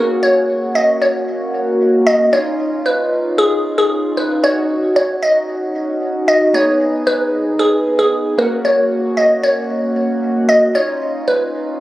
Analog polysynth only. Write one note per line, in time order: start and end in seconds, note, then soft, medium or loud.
0.00 2.29 A#3 medium
0.00 2.29 C#4 medium
0.00 2.29 F#4 medium
2.32 4.39 C#4 medium
2.32 4.39 D#4 medium
2.32 4.40 F4 medium
4.43 6.50 C#4 medium
4.43 6.50 D#4 medium
4.43 6.50 F#4 medium
6.53 8.34 B3 medium
6.53 8.35 D#4 medium
6.53 8.35 G#4 medium
8.38 10.71 A#3 medium
8.38 10.71 C#4 medium
8.38 10.71 F#4 medium
10.74 11.80 C#4 medium
10.74 11.80 D#4 medium
10.74 11.80 F4 medium